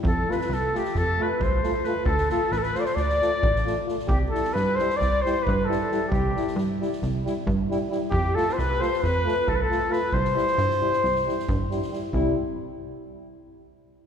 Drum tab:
SD |--ooo-ooo-----o-o-|-oo-ooooooo--oo-oo|--ooo-ooo-o---o-o-|--ooo-ooo-o---o-o-|
BD |o-------o---o-----|o-----------o-----|o-------o---o-----|o-------o---o-----|

SD |--ooo-ooo-o---o-o-|-ooooo-ooooo--ooo-|------------------|
BD |o-------o---o-----|o-----------o-----|o-----------------|